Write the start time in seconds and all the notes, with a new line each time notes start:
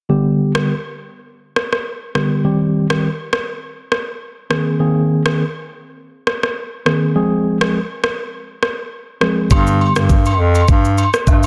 0.09 D3 G3 B3 G4
0.55 D3 G3 B3 G4, cross-stick
1.56 cross-stick
1.73 cross-stick
2.15 D3 G3 B3 G4, cross-stick
2.44 D#3 G3 C4 G4
2.90 D#3 G3 C4 G4, cross-stick
3.33 cross-stick
3.92 cross-stick
4.50 D#3 A#3 C4 G#4, cross-stick
4.79 D#3 A#3 C4 G#4
5.25 D#3 A#3 C4 G#4, cross-stick
6.27 cross-stick
6.43 cross-stick
6.86 D#3 A#3 C4 G#4, cross-stick
7.15 F3 G#3 C4 G#4
7.61 F3 G#3 C4 G#4, cross-stick
8.04 cross-stick
8.63 cross-stick
9.21 F3 G#3 C4 G#4, cross-stick
9.50 G2 D3 G3 B3 G4, kick, high agogo, shaker
9.67 shaker
9.81 high agogo
9.96 G2 D3 G3 B3 G4, cross-stick, shaker
10.10 kick, shaker
10.26 high agogo, shaker
10.39 F2
10.55 high agogo, shaker
10.68 G2, kick, shaker
10.85 shaker
10.98 high agogo, shaker
11.14 cross-stick, shaker
11.27 G2, kick, low woodblock, shaker
11.43 shaker